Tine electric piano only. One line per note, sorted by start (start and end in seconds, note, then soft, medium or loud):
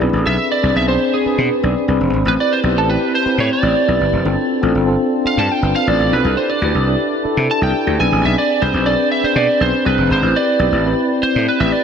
0.00 0.58 C4 medium
0.00 0.58 D4 medium
0.00 0.58 G#4 medium
0.00 0.58 B4 loud
0.63 0.86 C4 medium
0.63 0.86 D4 medium
0.63 0.86 G#4 medium
0.63 0.86 C5 medium
0.88 1.22 C4 medium
0.88 1.22 D4 medium
0.88 1.23 G#4 medium
0.88 1.23 D5 medium
1.25 1.60 C4 medium
1.25 1.60 D4 medium
1.25 1.60 G#4 medium
1.25 1.60 B4 medium
1.62 1.86 C4 medium
1.62 1.86 D4 medium
1.62 1.86 G#4 medium
1.62 1.87 D5 medium
1.88 2.22 C4 medium
1.88 2.22 D4 medium
1.88 2.22 G#4 medium
1.88 2.23 B4 medium
2.26 2.60 C4 medium
2.26 2.60 E4 medium
2.26 2.60 G4 medium
2.26 2.61 B4 medium
2.64 2.86 C4 medium
2.64 2.86 E4 medium
2.64 2.87 G4 medium
2.64 2.87 C5 medium
2.88 3.22 C4 medium
2.88 3.23 E4 medium
2.88 3.23 G4 medium
2.88 3.23 B4 medium
3.26 3.60 C4 medium
3.26 3.60 E4 medium
3.26 3.60 G4 medium
3.26 3.60 B4 medium
3.62 3.85 C4 medium
3.62 3.86 E4 medium
3.62 3.86 G4 medium
3.62 3.86 D5 medium
3.87 4.22 C4 medium
3.87 4.22 E4 medium
3.87 4.22 G4 medium
3.87 4.22 B4 medium
4.25 4.59 C4 medium
4.25 4.59 D4 medium
4.25 4.59 F4 medium
4.25 4.60 A4 medium
4.61 4.85 C4 medium
4.61 4.85 D4 medium
4.61 4.85 F4 medium
4.61 4.85 A4 loud
4.86 5.21 C4 medium
4.86 5.21 D4 medium
4.86 5.21 F4 medium
4.86 5.22 A4 medium
5.24 5.59 C4 medium
5.24 5.59 D4 medium
5.24 5.59 F4 medium
5.24 5.59 A4 medium
5.62 5.85 C4 medium
5.62 5.85 D4 medium
5.62 5.86 F4 medium
5.62 5.86 B4 medium
5.88 6.22 C4 medium
5.88 6.22 D4 medium
5.88 6.22 F4 medium
5.88 6.22 B4 medium
6.25 6.59 D4 medium
6.25 6.59 E4 medium
6.25 6.60 G4 medium
6.25 6.60 A4 medium
6.63 6.85 D4 medium
6.63 6.85 E4 medium
6.63 6.86 G4 medium
6.63 6.86 B4 medium
6.88 7.22 D4 medium
6.88 7.22 E4 medium
6.88 7.22 G4 medium
6.88 7.22 A4 medium
7.24 7.58 D4 medium
7.24 7.58 E4 medium
7.24 7.59 G4 medium
7.24 7.59 A4 medium
7.61 7.84 D4 medium
7.61 7.84 E4 medium
7.61 7.85 G4 medium
7.61 7.85 A4 medium
7.86 7.98 D4 medium
7.86 7.99 E4 medium
7.86 7.99 G4 medium
7.86 7.99 A4 medium
7.99 8.56 C4 medium
7.99 8.56 D4 medium
7.99 8.56 G#4 medium
7.99 8.57 B4 medium
8.61 8.84 C4 medium
8.61 8.84 D4 medium
8.61 8.84 G#4 medium
8.61 8.85 B4 medium
8.87 9.21 C4 medium
8.87 9.21 D4 medium
8.87 9.21 G#4 medium
8.87 9.21 B4 medium
9.23 9.58 C4 medium
9.23 9.58 D4 medium
9.23 9.58 G#4 medium
9.23 9.58 D5 medium
9.60 9.84 C4 medium
9.60 9.84 D4 medium
9.60 9.84 G#4 medium
9.60 9.84 B4 medium
9.85 10.20 C4 medium
9.85 10.20 D4 medium
9.85 10.20 G#4 medium
10.23 10.58 C4 medium
10.23 10.58 E4 medium
10.23 10.58 G4 medium
10.23 10.58 B4 medium
10.60 10.84 C4 medium
10.60 10.84 E4 medium
10.60 10.84 G4 medium
10.60 10.84 B4 medium
10.86 11.20 C4 medium
10.86 11.20 E4 medium
10.86 11.21 G4 medium
10.86 11.21 B4 medium
11.23 11.57 C4 medium
11.23 11.58 E4 medium
11.23 11.58 G4 medium
11.23 11.58 D5 medium
11.60 11.83 C4 medium
11.60 11.84 E4 medium
11.60 11.84 G4 medium
11.60 11.84 B4 medium